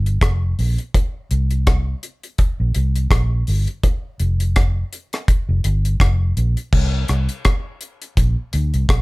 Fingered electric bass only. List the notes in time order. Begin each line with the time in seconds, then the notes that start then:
Already playing: G1
0.22 F1
0.59 A#1
1.31 C2
2.60 A#1
2.76 C2
3.11 A#1
3.48 G1
4.20 F1
5.49 F1
5.65 G1
6.00 F1
6.37 A#1
6.73 C2
7.09 C2
8.17 A#1
8.54 D2
8.74 C2
8.89 A#1